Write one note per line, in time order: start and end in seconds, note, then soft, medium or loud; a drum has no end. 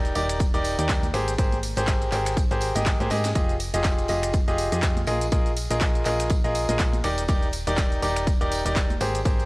0.00 0.13 D#1 loud
0.00 0.13 D#4 medium
0.00 0.13 G4 medium
0.00 0.13 A#4 medium
0.00 0.13 D5 loud
0.05 closed hi-hat soft
0.05 tambourine soft
0.05 shaker soft
0.15 0.51 D#1 loud
0.15 0.42 D#4 medium
0.15 0.42 G4 medium
0.15 0.42 A#4 medium
0.15 0.42 D5 loud
0.15 open hi-hat medium
0.15 ride medium
0.15 tambourine medium
0.29 finger snap medium
0.29 closed hi-hat medium
0.29 ride soft
0.29 tambourine soft
0.29 shaker medium
0.40 kick loud
0.40 closed hi-hat medium
0.40 ride medium
0.40 tambourine soft
0.40 shaker medium
0.54 0.76 D#1 medium
0.54 0.75 D#4 loud
0.54 0.75 G4 medium
0.54 0.75 A#4 medium
0.54 0.75 D5 loud
0.54 closed hi-hat soft
0.54 tambourine soft
0.54 shaker soft
0.64 open hi-hat loud
0.64 ride medium
0.64 tambourine medium
0.79 1.12 D#2 loud
0.79 1.05 D#4 medium
0.79 1.05 G4 medium
0.79 1.05 A#4 medium
0.79 1.05 D5 loud
0.79 closed hi-hat medium
0.79 shaker medium
0.89 kick loud
0.89 snare loud
0.89 clap loud
0.89 closed hi-hat medium
0.89 ride medium
0.89 tambourine soft
0.89 shaker medium
1.03 closed hi-hat soft
1.03 tambourine soft
1.03 high conga medium
1.03 shaker soft
1.14 1.36 G#1 loud
1.14 1.31 G4 medium
1.14 1.31 G#4 medium
1.14 1.31 A#4 medium
1.14 1.31 C5 loud
1.14 finger snap medium
1.14 open hi-hat medium
1.14 ride medium
1.14 tambourine loud
1.28 closed hi-hat medium
1.28 tambourine soft
1.28 shaker medium
1.38 1.74 G#1 medium
1.38 1.56 G4 loud
1.38 1.56 G#4 medium
1.38 1.56 A#4 medium
1.38 1.56 C5 loud
1.38 kick loud
1.38 closed hi-hat medium
1.38 ride loud
1.38 tambourine medium
1.38 shaker medium
1.52 closed hi-hat soft
1.52 tambourine soft
1.52 high conga medium
1.52 shaker soft
1.63 open hi-hat loud
1.63 ride medium
1.63 tambourine medium
1.76 2.10 G#1 medium
1.76 2.10 G4 loud
1.76 2.10 G#4 medium
1.76 2.10 A#4 medium
1.76 2.10 C5 loud
1.76 closed hi-hat medium
1.76 tambourine soft
1.76 shaker medium
1.87 kick loud
1.87 snare loud
1.87 clap loud
1.87 closed hi-hat medium
1.87 ride loud
1.87 tambourine soft
1.87 shaker medium
2.01 closed hi-hat soft
2.01 tambourine soft
2.01 shaker soft
2.12 2.48 G#1 loud
2.12 2.39 G4 medium
2.12 2.39 G#4 medium
2.12 2.38 A#4 medium
2.12 2.38 C5 loud
2.12 clap medium
2.12 open hi-hat medium
2.12 ride medium
2.12 tambourine medium
2.25 finger snap medium
2.25 snare medium
2.25 closed hi-hat medium
2.25 tambourine soft
2.25 shaker medium
2.37 kick loud
2.37 closed hi-hat medium
2.37 ride medium
2.37 tambourine medium
2.37 shaker medium
2.51 2.73 G#1 loud
2.51 2.72 G4 medium
2.51 2.72 G#4 medium
2.51 2.72 A#4 medium
2.51 2.72 C5 loud
2.51 closed hi-hat soft
2.51 tambourine soft
2.51 shaker soft
2.61 open hi-hat loud
2.61 ride medium
2.61 tambourine medium
2.75 2.97 G#1 loud
2.75 2.97 G4 medium
2.75 2.97 G#4 medium
2.75 2.97 A#4 medium
2.75 2.97 D#5 loud
2.75 snare soft
2.75 closed hi-hat medium
2.75 tambourine soft
2.75 high conga medium
2.75 shaker medium
2.85 kick loud
2.85 snare loud
2.85 clap loud
2.85 closed hi-hat medium
2.85 ride medium
2.85 tambourine soft
2.85 shaker medium
3.00 3.09 G#1 loud
3.00 3.09 G4 medium
3.00 3.09 G#4 medium
3.00 3.09 A#4 medium
3.00 3.09 C5 loud
3.00 closed hi-hat soft
3.00 tambourine soft
3.00 high conga medium
3.00 shaker soft
3.10 3.33 G#2 loud
3.10 3.28 G4 medium
3.10 3.28 G#4 medium
3.10 3.28 A#4 medium
3.10 3.28 D#5 loud
3.10 snare medium
3.10 open hi-hat medium
3.10 ride medium
3.10 tambourine medium
3.24 snare medium
3.24 snare loud
3.24 closed hi-hat medium
3.24 ride medium
3.24 tambourine soft
3.24 shaker medium
3.35 3.71 F1 loud
3.35 3.53 F4 loud
3.35 3.53 G4 medium
3.35 3.53 G#4 medium
3.35 3.53 D#5 loud
3.35 kick loud
3.35 closed hi-hat medium
3.35 ride medium
3.35 tambourine medium
3.35 shaker medium
3.49 closed hi-hat soft
3.49 tambourine soft
3.49 shaker soft
3.60 open hi-hat loud
3.60 ride medium
3.60 tambourine medium
3.74 4.07 F1 loud
3.74 4.06 F4 loud
3.74 4.06 G4 medium
3.74 4.06 G#4 medium
3.74 4.06 D#5 loud
3.74 closed hi-hat medium
3.74 ride soft
3.74 tambourine soft
3.74 shaker medium
3.84 kick loud
3.84 snare loud
3.84 clap loud
3.84 closed hi-hat medium
3.84 ride medium
3.84 tambourine medium
3.84 shaker medium
3.98 closed hi-hat soft
3.98 tambourine soft
3.98 shaker soft
4.08 4.45 F1 loud
4.08 4.35 F4 medium
4.08 4.35 G4 medium
4.08 4.35 G#4 medium
4.08 4.35 D#5 loud
4.08 open hi-hat medium
4.08 ride medium
4.08 tambourine medium
4.23 finger snap medium
4.23 closed hi-hat medium
4.23 ride soft
4.23 tambourine soft
4.23 shaker medium
4.33 kick loud
4.33 closed hi-hat medium
4.33 ride medium
4.33 tambourine medium
4.33 shaker medium
4.48 4.69 F1 loud
4.48 4.69 F4 loud
4.48 4.69 G4 medium
4.48 4.69 G#4 medium
4.48 4.69 D#5 loud
4.48 closed hi-hat soft
4.48 tambourine soft
4.48 shaker soft
4.58 open hi-hat loud
4.58 ride medium
4.58 tambourine medium
4.72 5.05 F2 loud
4.72 4.98 F4 medium
4.72 4.98 G4 medium
4.72 4.98 G#4 medium
4.72 4.98 D#5 medium
4.72 closed hi-hat medium
4.72 tambourine soft
4.72 shaker medium
4.82 kick loud
4.82 snare loud
4.82 clap loud
4.82 closed hi-hat medium
4.82 ride medium
4.82 tambourine medium
4.82 shaker medium
4.96 closed hi-hat soft
4.96 tambourine soft
4.96 high conga medium
4.96 shaker soft
5.07 5.30 A#1 loud
5.07 5.25 F4 medium
5.07 5.25 G#4 medium
5.07 5.25 A#4 medium
5.07 5.25 D#5 loud
5.07 finger snap medium
5.07 open hi-hat medium
5.07 ride medium
5.07 tambourine medium
5.21 closed hi-hat medium
5.21 tambourine soft
5.21 shaker medium
5.32 5.68 A#1 medium
5.32 5.49 F4 loud
5.32 5.49 G#4 medium
5.32 5.49 A#4 medium
5.32 5.49 D#5 loud
5.32 kick loud
5.32 closed hi-hat medium
5.32 ride medium
5.32 tambourine medium
5.32 shaker medium
5.46 closed hi-hat soft
5.46 tambourine soft
5.46 shaker soft
5.57 open hi-hat loud
5.57 ride medium
5.57 tambourine medium
5.71 6.04 A#1 medium
5.71 6.03 F4 loud
5.71 6.03 G#4 medium
5.71 6.03 A#4 medium
5.71 6.03 D#5 loud
5.71 closed hi-hat medium
5.71 tambourine soft
5.71 shaker medium
5.80 kick loud
5.80 snare loud
5.80 clap loud
5.80 closed hi-hat medium
5.80 ride medium
5.80 tambourine medium
5.80 shaker medium
5.95 closed hi-hat soft
5.95 tambourine soft
5.95 shaker soft
6.05 6.42 A#1 medium
6.05 6.32 F4 medium
6.05 6.32 G#4 medium
6.05 6.32 A#4 medium
6.05 6.32 D#5 loud
6.05 clap medium
6.05 open hi-hat loud
6.05 ride medium
6.05 tambourine loud
6.19 finger snap medium
6.19 snare medium
6.19 closed hi-hat medium
6.19 tambourine soft
6.19 shaker medium
6.29 kick loud
6.29 closed hi-hat medium
6.29 ride medium
6.29 tambourine medium
6.29 shaker medium
6.44 6.66 A#1 medium
6.44 6.65 F4 loud
6.44 6.66 G#4 medium
6.44 6.66 A#4 medium
6.44 6.66 D#5 loud
6.44 closed hi-hat soft
6.44 tambourine soft
6.44 shaker soft
6.55 open hi-hat loud
6.55 ride medium
6.55 tambourine medium
6.69 7.02 A#1 loud
6.69 6.95 F4 medium
6.69 6.95 G#4 medium
6.69 6.95 A#4 medium
6.69 6.95 D#5 loud
6.69 snare soft
6.69 closed hi-hat medium
6.69 tambourine soft
6.69 high conga medium
6.69 shaker medium
6.79 kick loud
6.79 snare loud
6.79 clap loud
6.79 closed hi-hat medium
6.79 ride medium
6.79 tambourine medium
6.79 shaker medium
6.93 closed hi-hat soft
6.93 tambourine soft
6.93 high conga medium
6.93 shaker soft
7.04 7.27 D#1 loud
7.04 7.22 D#4 medium
7.04 7.22 G4 medium
7.04 7.21 A#4 medium
7.04 7.21 D5 loud
7.04 finger snap medium
7.04 open hi-hat loud
7.04 ride medium
7.04 tambourine medium
7.18 closed hi-hat medium
7.18 tambourine soft
7.18 shaker medium
7.28 7.64 D#1 loud
7.28 7.46 D#4 loud
7.28 7.46 G4 medium
7.28 7.46 A#4 medium
7.28 7.46 D5 loud
7.28 kick loud
7.28 closed hi-hat medium
7.28 ride loud
7.28 tambourine medium
7.28 shaker medium
7.43 closed hi-hat soft
7.43 tambourine soft
7.43 shaker soft
7.53 open hi-hat loud
7.53 ride medium
7.53 tambourine medium
7.67 8.00 D#1 loud
7.67 8.00 D#4 loud
7.67 8.00 G4 medium
7.67 8.00 A#4 medium
7.67 8.00 D5 loud
7.67 closed hi-hat medium
7.67 ride soft
7.67 tambourine soft
7.67 shaker medium
7.77 kick loud
7.77 snare loud
7.77 clap loud
7.77 closed hi-hat medium
7.77 ride medium
7.77 tambourine medium
7.77 shaker medium
7.92 closed hi-hat soft
7.92 tambourine soft
7.92 shaker soft
8.02 8.38 D#1 loud
8.02 8.29 D#4 medium
8.02 8.29 G4 medium
8.02 8.29 A#4 medium
8.02 8.29 D5 loud
8.02 open hi-hat loud
8.02 ride medium
8.02 tambourine loud
8.16 finger snap medium
8.16 closed hi-hat medium
8.16 ride soft
8.16 tambourine soft
8.16 shaker medium
8.27 kick loud
8.27 closed hi-hat medium
8.27 ride medium
8.27 tambourine medium
8.27 shaker medium
8.41 8.63 D#1 medium
8.41 8.62 D#4 loud
8.41 8.62 G4 medium
8.41 8.62 A#4 medium
8.41 8.62 D5 loud
8.41 closed hi-hat soft
8.41 tambourine soft
8.41 shaker soft
8.51 open hi-hat loud
8.51 ride medium
8.51 tambourine medium
8.65 8.99 D#1 loud
8.65 8.91 D#4 medium
8.65 8.91 G4 medium
8.65 8.91 A#4 medium
8.65 8.91 D5 loud
8.65 closed hi-hat medium
8.65 tambourine soft
8.65 shaker medium
8.76 kick loud
8.76 snare loud
8.76 clap loud
8.76 closed hi-hat medium
8.76 ride medium
8.76 tambourine medium
8.76 shaker medium
8.89 closed hi-hat soft
8.89 tambourine soft
8.89 high conga medium
8.89 shaker soft
9.01 9.23 G#1 loud
9.01 9.18 G4 medium
9.01 9.18 G#4 medium
9.01 9.18 A#4 medium
9.01 9.18 C5 loud
9.01 finger snap medium
9.01 open hi-hat loud
9.01 ride medium
9.01 tambourine loud
9.15 closed hi-hat medium
9.15 tambourine soft
9.15 shaker medium
9.25 9.45 G#1 medium
9.25 9.43 G4 medium
9.25 9.43 G#4 medium
9.25 9.43 A#4 medium
9.25 9.43 C5 loud
9.25 kick loud
9.25 closed hi-hat medium
9.25 ride medium
9.25 tambourine medium
9.25 shaker medium
9.39 closed hi-hat soft
9.39 tambourine soft
9.39 shaker soft